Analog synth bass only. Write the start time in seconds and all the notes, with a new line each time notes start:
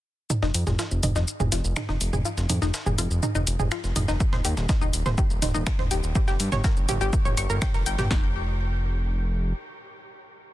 0.42 F1
0.54 F2
0.67 F1
0.91 F1
1.03 F1
1.15 F1
1.40 F1
1.52 F1
1.64 F1
1.89 F1
2.01 F1
2.13 F1
2.37 F1
2.50 F2
2.62 F1
2.86 F1
2.98 F1
3.11 F1
3.35 F1
3.47 F1
3.59 F1
3.84 F1
3.96 F1
4.08 F1
4.33 D#1
4.45 D#2
4.57 D#1
4.82 D#1
4.94 D#1
5.06 D#1
5.30 D#1
5.42 D#1
5.55 D#1
5.79 D#1
5.91 D#1
6.04 D#1
6.28 G1
6.40 G2
6.52 G1
6.77 G1
6.89 G1
7.01 G1
7.25 G1
7.37 G1
7.50 G1
7.74 G1
7.86 G1
7.99 G1
8.11 F1